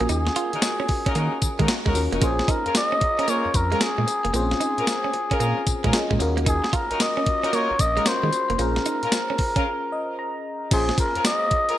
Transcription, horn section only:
0.53 0.68 A#3 medium
0.53 0.67 C#4 medium
0.53 0.67 D#4 medium
0.53 0.68 F#4 medium
0.53 0.68 A#4 medium
1.06 1.15 A#3 medium
1.06 1.14 C#4 medium
1.06 1.15 D#4 medium
1.06 1.15 F#4 medium
1.06 1.15 A#4 medium
1.16 1.36 A#3 medium
1.16 1.36 C#4 medium
1.16 1.36 D#4 medium
1.16 1.36 F#4 medium
1.16 1.36 A#4 medium
1.60 1.74 A#3 medium
1.60 1.74 C#4 medium
1.60 1.74 D#4 medium
1.60 1.74 F#4 medium
1.60 1.74 A#4 medium
1.86 2.00 A#3 medium
1.86 2.00 C#4 medium
1.86 2.00 D#4 medium
1.86 2.00 F#4 medium
1.86 2.00 A#4 medium
2.12 2.27 A#3 medium
2.12 2.27 C#4 medium
2.12 2.27 D#4 medium
2.12 2.27 F#4 medium
2.12 2.27 A#4 medium
2.65 2.80 A#3 medium
2.65 2.80 C#4 medium
2.65 2.80 F4 medium
2.65 2.80 G#4 medium
2.65 2.80 A#4 medium
3.18 3.27 A#3 medium
3.18 3.27 C#4 medium
3.18 3.27 F4 medium
3.18 3.27 G#4 medium
3.18 3.27 A#4 medium
3.28 3.48 A#3 medium
3.28 3.48 C#4 medium
3.28 3.48 F4 medium
3.28 3.48 G#4 medium
3.28 3.48 A#4 medium
3.72 3.86 A#3 medium
3.72 3.86 C#4 medium
3.72 3.86 F4 medium
3.72 3.86 G#4 medium
3.72 3.86 A#4 medium
4.78 4.93 A#3 medium
4.78 4.92 C#4 medium
4.78 4.92 F4 medium
4.78 4.92 G#4 medium
4.78 4.93 A#4 medium
5.31 5.40 A#3 medium
5.31 5.39 C#4 medium
5.31 5.39 F4 medium
5.31 5.40 G#4 medium
5.31 5.40 A#4 medium
5.40 5.61 A#3 medium
5.40 5.60 C#4 medium
5.40 5.60 F4 medium
5.40 5.61 G#4 medium
5.40 5.61 A#4 medium
5.84 5.99 A#3 medium
5.84 5.98 C#4 medium
5.84 5.99 F4 medium
5.84 5.99 G#4 medium
5.84 5.99 A#4 medium
6.90 7.05 A#3 medium
6.90 7.05 C#4 medium
6.90 7.05 D#4 medium
6.90 7.05 F#4 medium
6.90 7.05 A#4 medium
7.43 7.52 A#3 medium
7.43 7.51 C#4 medium
7.43 7.51 D#4 medium
7.43 7.52 F#4 medium
7.43 7.52 A#4 medium
7.53 7.73 A#3 medium
7.53 7.73 C#4 medium
7.53 7.73 D#4 medium
7.53 7.73 F#4 medium
7.53 7.73 A#4 medium
7.97 8.11 A#3 medium
7.97 8.11 C#4 medium
7.97 8.11 D#4 medium
7.97 8.11 F#4 medium
7.97 8.11 A#4 medium
9.03 9.17 A#3 medium
9.03 9.17 C#4 medium
9.03 9.17 F4 medium
9.03 9.17 G#4 medium
9.03 9.17 A#4 medium
9.56 9.65 A#3 medium
9.56 9.65 C#4 medium
9.56 9.65 F4 medium
9.56 9.65 G#4 medium
9.56 9.65 A#4 medium
11.15 11.30 A#3 medium
11.15 11.29 C#4 medium
11.15 11.29 F4 medium
11.15 11.30 G#4 medium
11.15 11.30 A#4 medium
11.68 11.77 A#3 medium
11.68 11.76 C#4 medium
11.68 11.76 F4 medium
11.68 11.76 G#4 medium
11.68 11.77 A#4 medium

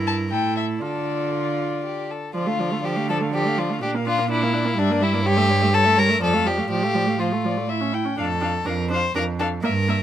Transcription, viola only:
0.00 0.30 E4 soft
0.31 0.83 E4 soft
0.81 2.13 F4 soft
2.34 2.48 F3 soft
2.47 2.61 A3 soft
2.59 2.73 F3 soft
2.71 2.82 A3 soft
2.83 2.98 F3 soft
2.96 3.11 A3 soft
3.09 3.22 F3 soft
3.21 3.32 A3 soft
3.33 3.47 F3 soft
3.45 3.59 A3 soft
3.58 3.71 F3 soft
3.70 3.82 A3 soft
3.83 3.96 D4 soft
3.95 4.08 A#3 soft
4.07 4.20 D4 soft
4.19 4.30 A#3 soft
4.30 4.44 D4 soft
4.43 4.55 A#3 soft
4.53 4.67 D4 soft
4.65 4.76 A#3 soft
4.77 4.92 G3 medium
4.90 5.03 A#3 soft
5.01 5.15 G3 medium
5.14 5.24 A#3 medium
5.25 5.38 G3 medium
5.37 5.51 A3 medium
5.49 5.64 G3 medium
5.62 5.73 A3 medium
5.73 5.87 G3 soft
5.86 5.99 A3 soft
5.97 6.10 G3 soft
6.09 6.20 A3 medium
6.21 6.35 F3 soft
6.33 6.47 A3 soft
6.45 6.59 F3 soft
6.58 6.70 A3 soft
6.70 6.84 F3 medium
6.83 6.96 A3 soft
6.95 7.08 F3 soft
7.07 7.18 A3 soft
7.19 7.34 F3 soft
7.32 7.46 A3 soft
7.45 7.59 F3 soft
7.57 7.69 A3 soft
7.69 7.82 E4 soft
7.81 7.94 C#4 soft
7.93 8.06 E4 soft
8.05 8.16 C#4 soft
8.17 8.25 D4 medium
8.41 8.49 D4 soft
8.65 8.73 D4 soft
8.90 8.98 D4 soft
9.15 9.23 D4 medium
9.40 9.48 D4 soft
9.63 9.71 A#3 medium
9.88 9.96 A#3 soft

